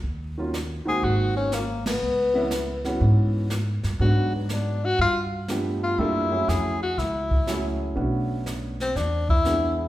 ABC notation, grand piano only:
X:1
M:4/4
L:1/8
Q:"Swing" 1/4=121
K:C#phr
V:1 name="Grand piano"
z [^D,F,^A,C=F] z [D,G,A,=C^F]3 z2 | z [E,G,B,CE] z [E,G,B,CF]3 z2 | [F,G,B,DF]3 z3 [=F,A,B,D=G]2 | [=G,_B,D=FA] [^F,A,CE^G]2 z3 [F,A,CEG]2 |
[A,B,CDF]3 z3 [G,B,DEG]2 |]